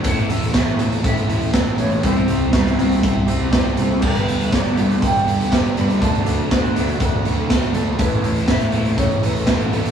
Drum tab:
CC |----------------|----------------|x---------------|----------------|
HH |xxxxxxxxxxxxxxxx|xxx-xxxxx-x-xxx-|-xxxxxxxxxxxxxxx|xxx-xxxxx-x-xxx-|
SD |----o-------o---|----oo------o---|----oo------o---|----o-------o---|
BD |o---o---o---o---|o---o---o---o---|o---o---o---o---|o---o---o---o---|

CC |----------------|
HH |xxxxxxxxxxxxxxxx|
SD |----o-------o---|
BD |o---o---o---o---|